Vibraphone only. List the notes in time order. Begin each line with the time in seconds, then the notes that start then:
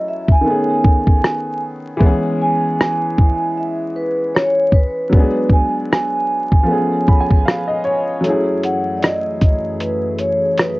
0.08 E5
0.32 G#5
2.42 G#5
3.57 E5
3.96 B4
4.35 C#5
4.74 B4
5.15 B4
5.53 G#5
5.92 G#5
8.64 F#5
8.97 D5
9.03 D#5
9.80 B4
10.19 C#5
10.58 B4